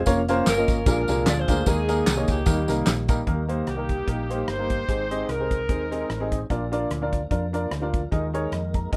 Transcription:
0.06 F1 A#3 C#4 E4 F4 A#4 C#5, kick, closed hi-hat, tambourine
0.13 F4
0.29 A#3 C#4 F4 A#4 C5, closed hi-hat, tambourine
0.46 G1 C#4 F4 A#4, snare, clap, closed hi-hat, tambourine
0.57 A#3 C#4 F4 A#4 D#5
0.68 G#1, kick, snare, closed hi-hat, tambourine
0.86 A#1 A#2 D3 F3 G#3 A#3 D4 F4 G#4 A#4, kick, closed hi-hat, tambourine
1.08 C2 A#3 D4 F4 G#4 A#4, snare, closed hi-hat, tambourine
1.26 D2 D5, snare, clap, closed hi-hat, tambourine
1.39 F4 G#4 C5
1.48 D2 A#3 D4 F4 G#4 A#4, kick, closed hi-hat, tambourine
1.66 D#2 D#3 G3 G#3 A#3 D#4 G#4 A#4, kick, closed hi-hat, tambourine
1.72 G#3
1.88 G#3 A#3 D#4 G#4 A#4, closed hi-hat, tambourine
2.06 C2, snare, clap, closed hi-hat, tambourine
2.17 G#3 A#3 D#4 G#4 C#5
2.28 C#2 A#3 D#4 G4, kick, closed hi-hat, tambourine
2.46 D#2 D#3 G3 A#3 D#4 G4 A#4, kick, closed hi-hat, tambourine
2.68 C2 G3 A#3 D#4 G4 A#4, snare, closed hi-hat, tambourine
2.86 A#1, snare, clap, closed hi-hat, tambourine
3.08 G3 A#3 D#4 G4 A#4, kick, closed hi-hat, tambourine
3.27 D#2 D#3 G3 A#3 D#4 G4 A#4, kick, closed hi-hat
3.49 A#3 D#4 G4 C5, closed hi-hat
3.67 C2 A#3 D#4 G4, cross-stick, closed hi-hat
3.77 A#3 D#4 G4 A#4
3.89 kick, cross-stick, closed hi-hat
4.07 A#1 A#3 D#4 G4 A#4, kick, closed hi-hat
4.30 A#3 D#4 G4 C5, cross-stick, closed hi-hat
4.48 G1 D#4 G4 C5, cross-stick, closed hi-hat
4.59 A#3 D#4 G4 A#4
4.70 kick, closed hi-hat
4.88 G#1 G#2 G#3 C4 D#4 G#4 C5, kick, closed hi-hat
5.11 C4 D#4 G#4 D#5, closed hi-hat
5.29 C2 D#4 A#4, cross-stick, closed hi-hat
5.40 C4 D#4 G#4 C5
5.51 kick, closed hi-hat
5.69 D#2 C4 D#4 G#4 C5, kick, closed hi-hat
5.91 C4 D#4 G#4 D#5, cross-stick, closed hi-hat
6.10 A1, cross-stick, closed hi-hat
6.20 C4 D#4 G#4 D#5
6.32 kick, closed hi-hat
6.50 A#1 A#2 F3 A#3 C4 D4 F4 A#4 D5, kick, closed hi-hat
6.56 D4
6.72 D4 F4 A#4 D5, closed hi-hat
6.90 D2, cross-stick, closed hi-hat
7.02 D4 F4 A#4 D5
7.13 kick, closed hi-hat
7.31 F2 D4 F4 A#4 D5, kick, closed hi-hat
7.53 D4 F4 A#4 D5, cross-stick, closed hi-hat
7.71 D2 G4 C5, cross-stick, closed hi-hat
7.82 D4 F4 A#4 D5
7.94 F4 A#4, kick, closed hi-hat
8.11 D#2 D#3 G#3 A#3 D#4 G#4 A#4 D#5, kick, closed hi-hat
8.34 D#4 G#4 A#4 C#5, closed hi-hat
8.52 F2 D#5, cross-stick, closed hi-hat
8.74 A#5, kick, closed hi-hat
8.92 D#2 D#3 G3 A#3 D#4 G4 A#4 D#5, kick, closed hi-hat

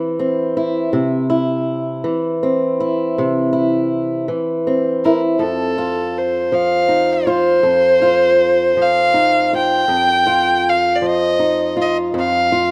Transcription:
Already playing: E3 C4 E4
0.19 C4
0.57 E4
0.93 C3
1.30 E4
2.04 E3
2.43 C4
2.80 E4
3.18 C3
3.53 E4
4.28 E3
4.67 C4
5.05 E4 A#4
5.39 F2 A4
5.78 F4
6.18 C5
6.52 F3 F5
6.89 D#4
7.27 F4 C5
7.63 F2
8.02 F4
8.77 F3
8.82 F5
9.14 D#4
9.53 F4 G5
9.88 F2
10.27 F4
10.69 F5
10.96 D5
11.02 F3
11.06 D#5
11.39 D#4
11.77 F4
11.81 D#5
12.14 F2
12.18 F5
12.52 F4

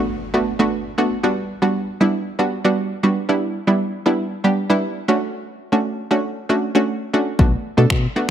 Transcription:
Already playing: A3 B3 D4 F#4, impact
0.34 A3 B3 D4 F#4
0.59 A3 B3 D4 F#4
0.98 A3 B3 D4 F#4
1.23 G3 B3 D4 F#4
1.62 G3 B3 D4 F#4
2.00 G3 B3 D4 E4
2.39 G3 B3 D4 F#4
2.64 G3 B3 D4 F#4
3.03 G3 B3 D4 F#4
3.29 G3 B3 D4 E4
3.67 G3 B3 D4 E4
4.06 G3 B3 D4 E4
4.44 G3 B3 D4 G4
4.70 G3 B3 D4 E4
5.08 A3 C#4 D4 F#4
5.72 A3 C#4 D4 F#4
6.11 A3 C#4 D4 F#4
6.49 A3 C#4 D4 F#4
6.75 A3 C#4 D4 F#4
7.13 A3 C#4 D4 F#4
7.39 B1 A3 B3 D4 F#4, kick
7.77 B2 A3 B3 D4 A4
7.90 B2, finger snap, kick
8.16 A3 B3 D4 F#4

